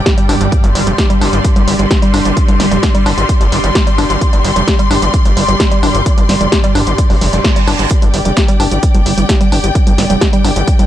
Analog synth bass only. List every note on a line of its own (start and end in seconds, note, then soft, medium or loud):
0.29 0.36 G1 medium
0.41 0.48 G1 medium
0.64 0.71 G1 medium
0.75 0.82 G1 loud
0.87 0.94 F1 medium
1.21 1.28 G1 medium
1.33 1.40 G1 medium
1.56 1.63 G1 medium
1.68 1.75 G1 medium
1.79 1.86 G1 medium
2.14 2.21 G1 loud
2.25 2.32 G1 medium
2.48 2.55 G1 medium
2.60 2.67 G1 medium
2.72 2.78 F1 medium
3.06 3.13 G1 medium
3.18 3.25 G1 medium
3.41 3.48 G1 medium
3.52 3.59 G1 medium
3.64 3.71 G1 medium
3.98 4.05 G1 loud
4.10 4.17 G1 medium
4.33 4.40 G1 medium
4.44 4.51 G1 loud
4.56 4.63 F1 medium
4.91 4.98 G1 medium
5.02 5.09 G1 medium
5.25 5.32 G1 medium
5.37 5.44 G1 medium
5.48 5.55 G1 medium
5.83 5.90 G1 loud
5.95 6.01 G1 medium
6.18 6.25 G1 medium
6.29 6.36 G1 loud
6.41 6.48 F1 medium
6.75 6.82 G1 medium
6.87 6.94 G1 medium
7.10 7.17 F1 medium
7.21 7.28 F1 medium
7.33 7.40 F1 medium
7.68 7.75 G1 loud
7.79 7.86 G1 medium
8.02 8.09 G1 medium
8.14 8.21 G1 loud
8.25 8.32 F1 medium
8.60 8.67 G1 medium
8.72 8.78 G1 medium
8.95 9.01 G1 medium
9.06 9.13 G1 medium
9.18 9.25 G1 medium
9.52 9.59 G1 loud
9.64 9.71 G1 medium
9.87 9.94 G1 medium
9.98 10.05 G1 loud
10.10 10.17 F1 medium
10.44 10.52 G1 medium
10.56 10.63 G1 medium
10.79 10.86 G1 medium